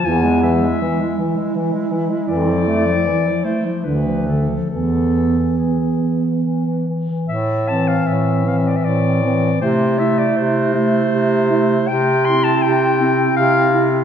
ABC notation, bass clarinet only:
X:1
M:3/4
L:1/8
Q:1/4=79
K:Am
V:1 name="Bass clarinet" clef=bass
E,,2 z4 | F,,2 z2 D,,2 | E,,2 z4 | A,,2 A,,2 A,,2 |
C,2 C,2 C,2 | C,2 C,2 C,2 |]